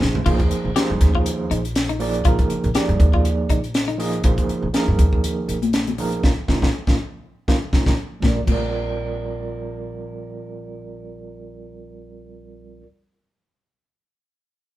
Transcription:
Already playing: F3 A#3 D#4 G#4 C5
0.01 A#1, snare, low conga
0.15 floor tom
0.26 A#1 F3 A#3 D#4 F4 G#4 C5, kick, crash
0.39 D#2, kick, closed hi-hat
0.51 muted upright bass stroke, closed hi-hat
0.65 A#1
0.75 F3 A#3 D#4 G4 G#4 C5, snare, closed hi-hat
0.90 G2
1.01 D#2, kick, snare, closed hi-hat
1.15 F4, kick
1.26 closed hi-hat
1.51 A#1 D#4, closed hi-hat
1.65 closed hi-hat
1.75 snare, closed hi-hat
1.89 D#4, closed hi-hat
1.99 F3 A#3 D#4 G#4 D5, open hi-hat
2.14 closed hi-hat
2.25 A#1 F3 A#3 D#4 F4 G#4 A#4, kick, closed hi-hat
2.39 D#2, kick, closed hi-hat
2.50 muted upright bass stroke, closed hi-hat
2.64 A#1, closed hi-hat
2.74 F3 A#3 D#4 G4 G#4 D5, snare, closed hi-hat
2.89 G2, closed hi-hat
3.00 D#2, kick, closed hi-hat
3.13 F4, kick
3.25 closed hi-hat
3.49 A#1 D#4, kick, closed hi-hat
3.64 closed hi-hat
3.74 snare, closed hi-hat
3.88 D#4, closed hi-hat
3.98 F3 A#3 D#4 G#4 D#5, open hi-hat
4.13 closed hi-hat
4.24 A#1 F3 A#3 D#4 G#4 C5, kick, closed hi-hat
4.38 D#2, kick, closed hi-hat
4.49 muted upright bass stroke, closed hi-hat
4.62 A#1
4.73 F3 A#3 D#4 G#4 A#4, snare, closed hi-hat
4.88 G2
4.99 D#2, kick, closed hi-hat, low conga
5.13 kick
5.24 closed hi-hat
5.48 A#1, closed hi-hat
5.62 closed hi-hat, high conga
5.73 snare, closed hi-hat
5.87 closed hi-hat, high conga
5.98 F3 A#3 D#4 G#4 A#4, open hi-hat, low conga
6.12 closed hi-hat
6.23 A#1 A#3 D#4 F4, kick, snare, low conga
6.48 A#1 A#3 D#4 F4, kick, snare, low conga
6.62 A#1 A#3 D#4 F4, kick, snare, low conga
6.87 A#1 A#3 D#4 F4, kick, snare, low conga
7.48 A#1 A#3 D#4 F4, kick, snare, low conga
7.73 A#1 A#3 D#4 F4, kick, snare, low conga
7.86 A#1 A#3 D#4 F4, kick, snare, low conga
8.20 A#1 G3 C4 F4, kick, snare, high conga
8.26 A#4 D5
8.45 A#1 G3 C4, kick, crash, high conga
8.49 F4 A#4 D5

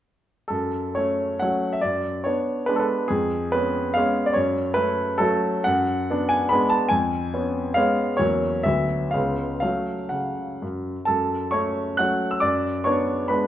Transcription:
0.48 F#2 A4
0.95 A3 C#4 C#5
1.39 F#3 A3 C#4 F#5
1.73 E5
1.81 F#2 D5
2.24 B3 D4 C#5
2.66 G#3 B3 D4 B4
2.76 A4 B4
3.08 F2 G#4
3.52 B3 C#4 B4
3.94 G#3 B3 C#4 F5
4.26 D5
4.34 F#2 C#5
4.74 A3 C#4 B4
5.18 F#3 A3 C#4 A4
5.64 F#2 F#5
6.10 B3 D4
6.29 G#5
6.49 G#3 B3 D4 B5
6.70 A5
6.89 F2 G#5
7.34 B3 C#4
7.74 G#3 B3 C#4 F5
8.17 E2 F#3 A#3 C#4 C#5
8.63 D2 F#3 B3 E5
9.11 C#2 G#3 B3 C#4 F5
9.60 F#3 A3 C#4 F5
10.09 C#3 F#5
10.62 F#2
11.05 F#2 A4 A5
11.51 A3 C#4 C#5 C#6
11.97 F#3 A3 C#4 F#5 F#6
12.31 E6
12.40 F#2 D5 D6
12.84 B3 D4 C#5 C#6
13.28 G#3 B3 D4 B4 B5

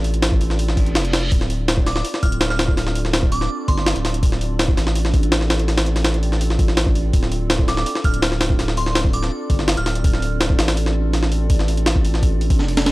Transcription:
Already playing: A1 C4 D4 F4 A4 D5
0.04 open hi-hat
0.14 closed hi-hat
0.22 snare, open hi-hat
0.32 kick
0.41 open hi-hat
0.50 snare
0.59 open hi-hat, reverse cymbal
0.68 snare
0.77 kick, open hi-hat
0.86 closed hi-hat
0.95 F1, snare, open hi-hat
1.05 closed hi-hat
1.13 snare, open hi-hat
1.32 D1 C4 D4 F4 A4 D5, kick, open hi-hat
1.41 snare
1.50 open hi-hat
1.68 snare, open hi-hat
1.77 kick
1.86 D6, snare, open hi-hat
1.96 D6, snare
2.05 open hi-hat
2.14 snare
2.23 D1 F6, kick, open hi-hat
2.32 closed hi-hat
2.41 snare, open hi-hat
2.50 F6, snare
2.59 snare, open hi-hat
2.68 kick
2.77 D1 C4 D4 F4 A4 D5, snare, open hi-hat
2.87 snare
2.95 open hi-hat
3.05 snare
3.14 snare, open hi-hat
3.23 kick
3.32 D6, open hi-hat
3.41 snare
3.68 G1 C6, kick, open hi-hat
3.78 snare
3.87 snare, open hi-hat
3.96 D1, closed hi-hat
4.05 snare, open hi-hat
4.14 closed hi-hat
4.23 C4 D4 F4 A4 D5, kick, open hi-hat
4.32 snare
4.41 open hi-hat
4.59 snare, open hi-hat
4.68 kick
4.77 A1, snare, open hi-hat
4.87 snare
4.95 open hi-hat
5.05 snare
5.14 kick, open hi-hat
5.23 closed hi-hat
5.32 snare, open hi-hat
5.41 snare
5.50 snare, open hi-hat
5.59 closed hi-hat
5.68 C4 D4 F4 A4 D5, snare, open hi-hat
5.78 snare, open hi-hat
5.86 closed hi-hat
5.96 snare, open hi-hat
6.04 snare, open hi-hat
6.14 closed hi-hat
6.23 open hi-hat
6.32 snare
6.41 open hi-hat
6.50 snare
6.59 A1, kick, open hi-hat
6.68 snare
6.77 snare, open hi-hat
6.86 kick
6.95 open hi-hat
7.13 D1 C4 D4 F4 A4 D5, kick, open hi-hat
7.23 snare
7.32 open hi-hat
7.50 snare, open hi-hat
7.59 kick
7.68 D6, snare, open hi-hat
7.77 D6, snare
7.86 open hi-hat
7.95 snare
8.04 D1 F6, kick, open hi-hat
8.14 closed hi-hat
8.22 snare, open hi-hat
8.32 snare
8.41 snare, open hi-hat
8.50 kick
8.59 D1 C4 D4 F4 A4 D5, snare, open hi-hat
8.68 snare
8.77 C6, open hi-hat
8.86 snare
8.95 snare, open hi-hat
9.05 kick
9.13 D6, open hi-hat
9.23 snare
9.50 G1, kick, open hi-hat
9.59 snare
9.68 snare, open hi-hat
9.77 D1 F6, closed hi-hat
9.86 snare, open hi-hat
9.95 closed hi-hat
10.04 C4 D4 F4 A4 D5, kick, open hi-hat
10.14 snare
10.22 open hi-hat
10.41 snare, open hi-hat
10.50 kick
10.59 A1, snare, open hi-hat
10.68 snare, open hi-hat
10.77 open hi-hat
10.86 snare
11.13 snare, open hi-hat
11.23 snare
11.32 open hi-hat
11.50 C4 D4 F4 A4 D5, kick, open hi-hat
11.59 snare
11.68 open hi-hat
11.77 closed hi-hat
11.86 snare, open hi-hat
11.96 kick
12.05 open hi-hat
12.14 snare
12.23 kick, open hi-hat
12.41 open hi-hat
12.50 kick, open hi-hat
12.59 F1, snare
12.68 open hi-hat
12.77 snare, open hi-hat
12.86 snare, open hi-hat

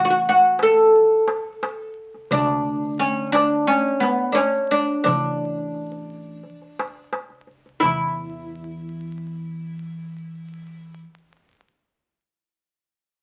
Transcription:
Already playing: A1
0.05 F#4, darbuka ka
0.10 F#4
0.26 F#4, darbuka ka
0.59 A4, darbuka tek
0.94 darbuka ka
1.28 darbuka tek
1.63 darbuka tek
2.14 darbuka ka
2.31 D2 D4, darbuka dum
2.84 darbuka ka
2.99 C#4, darbuka ka
3.32 D4, darbuka tek
3.67 C#4, darbuka ka
4.00 B3, darbuka tek
4.32 C#4 D4
4.38 darbuka tek
4.71 D4
5.04 A1 D4, darbuka dum
5.58 darbuka ka
5.74 darbuka ka
5.92 darbuka ka
6.43 darbuka ka
6.62 darbuka ka
6.79 darbuka tek
7.13 darbuka tek
7.30 darbuka ka
7.47 darbuka ka
7.66 darbuka ka
7.80 E2 E4, darbuka dum

